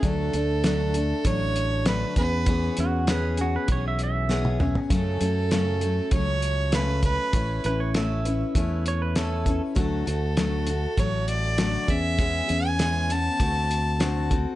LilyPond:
<<
  \new Staff \with { instrumentName = "Fiddle" } { \time 4/4 \key d \lydian \tempo 4 = 99 a'2 cis''4 b'8 b'8~ | b'8 r2. r8 | a'2 cis''4 b'8 b'8~ | b'8 r2. r8 |
a'2 cis''8 d''4 e''8~ | e''8. gis''8. a''2 r8 | }
  \new Staff \with { instrumentName = "Pedal steel guitar" } { \time 4/4 \key d \lydian r1 | r8 fis'8 b'8 fis'16 b'16 cis''16 e''16 e''4~ e''16 r16 | r1 | r8 b'16 cis''16 e''4. cis''16 b'16 a'8. r16 |
r1 | r1 | }
  \new Staff \with { instrumentName = "Steel-string acoustic guitar" } { \time 4/4 \key d \lydian <d fis a d' a'>8 <a d' a'>8 <d fis a d' a'>8 <a d' a'>8 <fis a d' a'>4 <d fis a d' a'>8 <b cis' gis'>8 | <e b cis' gis'>8 <b cis' gis'>8 <e b cis' gis'>8 <b cis' gis'>8 <e b cis' gis'>4 <e b cis' gis'>8 <b cis' gis'>8 | <fis, cis fis a cis' a'>8 <fis a cis' a'>8 <fis, cis fis a cis' a'>8 <fis a cis' a'>8 <fis a cis' a'>4 <fis, cis fis a cis' a'>8 <fis a cis' a'>8 | <a cis' e' b'>8 <cis' e' b'>8 <a cis' e' b'>8 <cis' e' b'>8 <a cis' e' b'>4 <a cis' e' b'>8 <cis' e' b'>8 |
<d fis a fis' a'>8 <a fis' a'>8 <d fis a fis' a'>8 <a fis' a'>8 <fis a fis' a'>4 <d fis a fis' a'>8 <b cis' gis'>8 | <e gis b cis' gis'>8 <b cis' gis'>8 <e gis b cis' gis'>8 <b cis'>8 <a c' fis' a'>4 <d a c' fis' a'>8 <c' fis' a'>8 | }
  \new Staff \with { instrumentName = "Fingered electric bass" } { \clef bass \time 4/4 \key d \lydian d,8 d,4. a,,4. e,8~ | e,8 e,4. b,,2 | fis,8 fis,4. cis,2 | a,,8 a,,4. e,2 |
d,8 d,4. a,,4. e,8~ | e,8 e,4. d,2 | }
  \new DrumStaff \with { instrumentName = "Drums" } \drummode { \time 4/4 <hh bd>8 hh8 <hh sn>8 hh8 <hh bd>8 hh8 <hh sn>8 <hh bd>8 | <hh bd>8 hh8 <hh sn>8 hh8 <hh bd>8 hh8 sn16 tommh16 toml16 tomfh16 | <hh bd>8 hh8 <hh sn>8 hh8 <hh bd>8 hh8 <hh sn>8 <hh bd>8 | <hh bd>8 hh8 <hh sn>8 hh8 <hh bd>8 hh8 <hh sn>8 <hh bd>8 |
<hh bd>8 hh8 <hh sn>8 hh8 <hh bd>8 hh8 <hh sn>8 <hh bd>8 | <hh bd>8 hh8 <hh sn>8 hh8 <hh bd>8 hh8 <hh sn>8 <hh bd>8 | }
>>